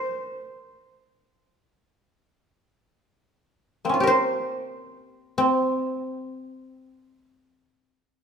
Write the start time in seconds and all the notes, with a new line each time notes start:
Already playing: A#4 C5
3.85 A#3 C4
3.89 C#4
3.94 F4
4.00 G4 A#4
4.07 C5
5.38 C4